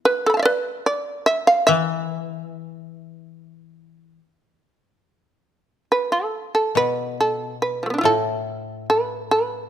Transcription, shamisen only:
0.05 0.25 B4 medium
0.26 0.39 A4 medium
0.26 0.34 B5 soft
0.34 0.51 F5 soft
0.34 0.37 A5 soft
0.39 0.57 D5 medium
0.39 0.42 E5 soft
0.45 0.84 B4 medium
0.86 1.25 D5 medium
1.26 1.47 E5 medium
1.47 1.66 F5 medium
1.67 5.84 E5 medium
5.92 6.11 B4 medium
6.12 6.53 A4 medium
6.55 6.75 A4 medium
6.77 7.17 B4 medium
7.21 7.60 A4 medium
7.62 8.01 B4 medium
7.83 7.93 F3 soft
7.83 7.90 A3 soft
7.90 7.98 B3 soft
7.90 8.01 D4 soft
7.98 8.12 E4 soft
7.98 8.15 F4 medium
8.05 8.85 A4 medium
8.90 9.29 B4 medium
9.31 9.69 B4 medium

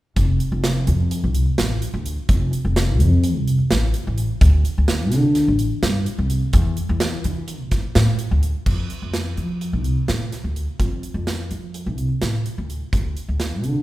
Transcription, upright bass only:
0.16 0.38 F1 medium
0.52 0.89 F1 medium
0.87 1.25 F2 medium
1.24 1.44 C2 medium
1.59 1.80 A1 medium
1.94 2.15 D2 medium
2.29 2.50 F1 medium
2.65 3.01 F1 medium
3.01 3.36 F2 medium
3.36 3.57 C2 medium
3.72 3.93 A1 medium
4.07 4.28 A1 medium
4.41 4.62 D2 medium
4.78 5.12 D2 medium
5.12 5.50 D3 medium
5.48 5.69 A1 medium
5.83 6.04 G2 medium
6.18 6.40 C2 medium
6.54 6.75 E2 medium
6.89 7.26 E2 medium
7.25 7.60 E3 medium
7.60 7.81 A#2 medium
7.96 8.17 A2 medium
8.31 8.52 D2 medium
8.66 8.88 F2 medium
9.02 9.38 F2 medium
9.37 9.75 F3 medium
9.73 9.94 C2 medium
10.09 10.30 A2 medium
10.44 10.65 D2 medium
10.80 11.01 F2 medium
11.14 11.52 F2 medium
11.51 11.88 F3 medium
11.86 12.07 C2 medium
12.22 12.43 A2 medium
12.58 12.79 D2 medium
12.93 13.14 D2 medium
13.28 13.63 D2 medium
13.63 13.82 D3 medium

